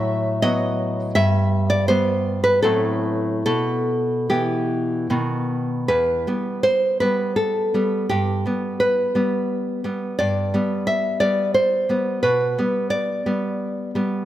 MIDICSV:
0, 0, Header, 1, 2, 480
1, 0, Start_track
1, 0, Key_signature, 1, "minor"
1, 0, Tempo, 730816
1, 761, Time_signature, 3, 2, 24, 8
1, 1733, Tempo, 829876
1, 2693, Tempo, 798935
1, 3653, Tempo, 736196
1, 4613, Tempo, 703400
1, 7013, Tempo, 682594
1, 9379, End_track
2, 0, Start_track
2, 0, Title_t, "Nylon-string guitar"
2, 0, Program_c, 0, 24
2, 0, Note_on_c, 0, 45, 77
2, 0, Note_on_c, 0, 54, 73
2, 0, Note_on_c, 0, 76, 125
2, 267, Note_off_c, 0, 76, 0
2, 275, Note_off_c, 0, 54, 0
2, 278, Note_on_c, 0, 75, 100
2, 283, Note_on_c, 0, 54, 53
2, 286, Note_on_c, 0, 59, 57
2, 734, Note_off_c, 0, 54, 0
2, 735, Note_off_c, 0, 59, 0
2, 738, Note_off_c, 0, 45, 0
2, 738, Note_off_c, 0, 75, 0
2, 756, Note_on_c, 0, 76, 107
2, 761, Note_on_c, 0, 43, 73
2, 1104, Note_off_c, 0, 76, 0
2, 1115, Note_on_c, 0, 74, 98
2, 1233, Note_off_c, 0, 74, 0
2, 1235, Note_on_c, 0, 72, 104
2, 1243, Note_on_c, 0, 55, 56
2, 1245, Note_on_c, 0, 59, 63
2, 1588, Note_off_c, 0, 72, 0
2, 1600, Note_on_c, 0, 71, 89
2, 1706, Note_off_c, 0, 43, 0
2, 1707, Note_off_c, 0, 55, 0
2, 1708, Note_off_c, 0, 59, 0
2, 1721, Note_off_c, 0, 71, 0
2, 1724, Note_on_c, 0, 69, 85
2, 1728, Note_on_c, 0, 45, 60
2, 1731, Note_on_c, 0, 54, 47
2, 1733, Note_off_c, 0, 54, 0
2, 1733, Note_on_c, 0, 54, 45
2, 1733, Note_on_c, 0, 60, 48
2, 1734, Note_off_c, 0, 60, 0
2, 1734, Note_on_c, 0, 60, 47
2, 1746, Note_off_c, 0, 60, 0
2, 2184, Note_off_c, 0, 54, 0
2, 2184, Note_off_c, 0, 69, 0
2, 2191, Note_off_c, 0, 45, 0
2, 2206, Note_on_c, 0, 69, 90
2, 2209, Note_on_c, 0, 47, 62
2, 2673, Note_off_c, 0, 69, 0
2, 2691, Note_on_c, 0, 52, 48
2, 2692, Note_on_c, 0, 67, 63
2, 2695, Note_on_c, 0, 59, 53
2, 3153, Note_off_c, 0, 52, 0
2, 3154, Note_off_c, 0, 47, 0
2, 3154, Note_off_c, 0, 59, 0
2, 3156, Note_off_c, 0, 67, 0
2, 3174, Note_on_c, 0, 51, 43
2, 3175, Note_on_c, 0, 47, 58
2, 3176, Note_off_c, 0, 51, 0
2, 3176, Note_on_c, 0, 51, 40
2, 3177, Note_on_c, 0, 59, 43
2, 3180, Note_off_c, 0, 59, 0
2, 3180, Note_on_c, 0, 59, 38
2, 3188, Note_off_c, 0, 51, 0
2, 3627, Note_off_c, 0, 59, 0
2, 3637, Note_off_c, 0, 47, 0
2, 3645, Note_on_c, 0, 71, 85
2, 3649, Note_on_c, 0, 40, 54
2, 3885, Note_off_c, 0, 40, 0
2, 3898, Note_on_c, 0, 55, 43
2, 3901, Note_on_c, 0, 59, 54
2, 4111, Note_off_c, 0, 71, 0
2, 4133, Note_on_c, 0, 72, 92
2, 4364, Note_off_c, 0, 72, 0
2, 4373, Note_off_c, 0, 55, 0
2, 4374, Note_off_c, 0, 59, 0
2, 4374, Note_on_c, 0, 71, 80
2, 4381, Note_on_c, 0, 55, 44
2, 4383, Note_on_c, 0, 59, 48
2, 4602, Note_off_c, 0, 71, 0
2, 4608, Note_on_c, 0, 69, 69
2, 4861, Note_off_c, 0, 55, 0
2, 4862, Note_off_c, 0, 59, 0
2, 4868, Note_on_c, 0, 55, 48
2, 4872, Note_on_c, 0, 59, 45
2, 5082, Note_off_c, 0, 69, 0
2, 5085, Note_off_c, 0, 55, 0
2, 5086, Note_off_c, 0, 59, 0
2, 5108, Note_on_c, 0, 67, 79
2, 5119, Note_on_c, 0, 43, 54
2, 5347, Note_off_c, 0, 43, 0
2, 5355, Note_on_c, 0, 55, 41
2, 5361, Note_on_c, 0, 59, 48
2, 5570, Note_off_c, 0, 67, 0
2, 5589, Note_on_c, 0, 71, 80
2, 5820, Note_off_c, 0, 55, 0
2, 5825, Note_off_c, 0, 59, 0
2, 5828, Note_on_c, 0, 55, 45
2, 5833, Note_on_c, 0, 59, 44
2, 6268, Note_off_c, 0, 71, 0
2, 6293, Note_off_c, 0, 55, 0
2, 6298, Note_off_c, 0, 59, 0
2, 6301, Note_on_c, 0, 55, 45
2, 6306, Note_on_c, 0, 59, 42
2, 6514, Note_off_c, 0, 55, 0
2, 6517, Note_off_c, 0, 59, 0
2, 6536, Note_on_c, 0, 74, 82
2, 6543, Note_on_c, 0, 43, 57
2, 6773, Note_off_c, 0, 43, 0
2, 6776, Note_on_c, 0, 55, 47
2, 6781, Note_on_c, 0, 59, 50
2, 6993, Note_off_c, 0, 74, 0
2, 7001, Note_on_c, 0, 76, 88
2, 7232, Note_off_c, 0, 76, 0
2, 7233, Note_off_c, 0, 59, 0
2, 7235, Note_on_c, 0, 74, 83
2, 7236, Note_off_c, 0, 55, 0
2, 7241, Note_on_c, 0, 59, 43
2, 7244, Note_on_c, 0, 55, 42
2, 7469, Note_off_c, 0, 74, 0
2, 7476, Note_on_c, 0, 72, 78
2, 7712, Note_off_c, 0, 55, 0
2, 7717, Note_off_c, 0, 59, 0
2, 7720, Note_on_c, 0, 55, 43
2, 7725, Note_on_c, 0, 59, 47
2, 7936, Note_off_c, 0, 55, 0
2, 7937, Note_off_c, 0, 72, 0
2, 7938, Note_off_c, 0, 59, 0
2, 7956, Note_on_c, 0, 71, 77
2, 7962, Note_on_c, 0, 47, 52
2, 8192, Note_off_c, 0, 47, 0
2, 8207, Note_on_c, 0, 55, 44
2, 8209, Note_on_c, 0, 59, 47
2, 8414, Note_off_c, 0, 71, 0
2, 8431, Note_on_c, 0, 74, 80
2, 8675, Note_off_c, 0, 55, 0
2, 8675, Note_off_c, 0, 59, 0
2, 8683, Note_on_c, 0, 55, 41
2, 8685, Note_on_c, 0, 59, 48
2, 9132, Note_off_c, 0, 74, 0
2, 9160, Note_off_c, 0, 55, 0
2, 9166, Note_off_c, 0, 59, 0
2, 9168, Note_on_c, 0, 55, 45
2, 9174, Note_on_c, 0, 59, 53
2, 9379, Note_off_c, 0, 55, 0
2, 9379, Note_off_c, 0, 59, 0
2, 9379, End_track
0, 0, End_of_file